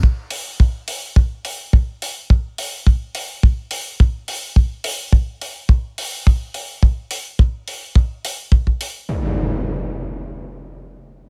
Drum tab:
HH |--o---o---o---o-|--o---o---o---o-|--o---o---o---o-|--o---o---o---o-|
BD |o---o---o---o---|o---o---o---o---|o---o---o---o---|o---o---o---oo--|

HH |----------------|
BD |----------------|